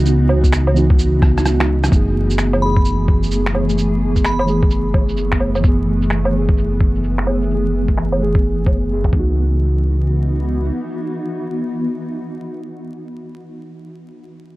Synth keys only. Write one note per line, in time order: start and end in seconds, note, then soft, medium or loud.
0.00 0.73 E3 loud
0.00 0.04 B3 medium
0.00 0.72 B3 medium
0.00 0.07 D#4 medium
0.00 0.09 F#4 loud
0.07 0.74 D#4 medium
0.07 0.75 F#4 medium
0.73 0.96 E3 loud
0.73 0.97 B3 medium
0.73 0.98 D#4 medium
0.78 0.99 F#4 loud
1.88 2.56 E3 medium
1.88 2.59 A3 medium
1.93 2.60 B3 medium
1.93 2.61 G#4 loud
2.57 3.50 E3 medium
2.57 3.52 A3 medium
2.63 3.53 B3 medium
2.63 3.54 G#4 loud
3.52 3.73 E3 medium
3.52 3.75 A3 medium
3.52 3.76 B3 medium
3.52 3.77 G#4 medium
3.75 4.44 E3 medium
3.75 4.45 A3 medium
3.79 4.46 B3 medium
3.79 4.48 G#4 medium
4.45 4.69 E3 medium
4.45 4.69 A3 medium
4.45 4.70 B3 medium
4.49 4.71 G#4 loud
5.60 6.29 E3 medium
5.60 6.31 A3 medium
5.66 6.32 B3 medium
5.66 6.34 G#4 loud
6.30 7.23 E3 medium
6.30 7.24 A3 medium
6.36 7.26 B3 medium
6.36 7.27 G#4 loud
7.25 7.45 E3 medium
7.25 7.48 A3 medium
7.25 7.48 B3 medium
7.25 7.49 G#4 medium
7.46 8.16 E3 medium
7.46 8.17 A3 medium
7.52 8.18 B3 medium
7.52 8.20 G#4 medium
8.18 8.41 E3 medium
8.18 8.42 A3 medium
8.18 8.42 B3 medium
8.23 8.43 G#4 loud
9.08 13.50 E3 medium
9.08 13.54 B3 medium
9.16 13.58 D#4 medium
9.16 13.62 F#4 medium